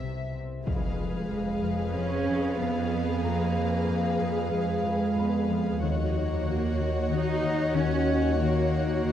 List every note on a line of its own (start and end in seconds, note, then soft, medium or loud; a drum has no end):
0.00 0.47 C2 soft
0.00 0.67 C2 medium
0.00 0.46 C3 soft
0.00 0.69 C3 soft
0.00 0.34 C4 soft
0.00 0.34 E5 soft
0.00 0.30 F#5 soft
0.35 0.70 C4 soft
0.66 1.30 F2 soft
0.66 5.78 F2 medium
0.66 5.79 F2 soft
0.66 5.79 G#4 soft
0.66 5.80 G#4 soft
0.66 5.79 B4 soft
0.66 5.79 F5 soft
0.66 5.80 F5 soft
0.66 impact soft
0.99 2.92 F3 soft
0.99 1.92 G#3 soft
1.31 1.62 F2 soft
1.63 1.96 F2 soft
1.63 3.52 F5 soft
1.96 2.28 F2 soft
1.96 2.60 C#4 medium
2.29 2.60 F2 soft
2.61 3.25 F2 soft
2.61 3.25 B3 soft
2.94 3.57 F3 soft
3.24 3.89 F2 soft
3.24 4.54 A#3 medium
3.24 5.14 A#5 soft
3.58 5.49 F3 soft
3.90 4.20 F2 soft
4.21 4.51 F2 medium
4.52 4.85 F2 soft
4.52 5.81 G#3 medium
4.86 5.17 F2 soft
5.18 5.85 F2 soft
5.18 7.09 B3 soft
5.18 7.08 B5 soft
5.50 5.85 F3 soft
5.82 9.12 D#2 soft
5.82 9.12 D#2 medium
5.82 6.44 D#3 medium
5.82 9.12 F#4 soft
5.82 9.12 C#5 soft
5.82 9.12 C#5 medium
5.82 9.12 F#5 soft
6.14 7.08 A#3 medium
6.14 8.06 D#4 soft
6.45 6.77 D#3 soft
6.78 7.09 D#3 soft
7.10 7.41 D#3 soft
7.10 7.76 D#4 medium
7.42 7.72 D#3 soft
7.42 9.12 D#5 soft
7.74 8.40 D#3 medium
7.74 8.41 C#4 medium
8.07 8.70 D#4 soft
8.40 9.03 D#3 medium
8.40 9.12 A#3 medium
8.71 9.12 D#4 soft
9.04 9.12 D#3 soft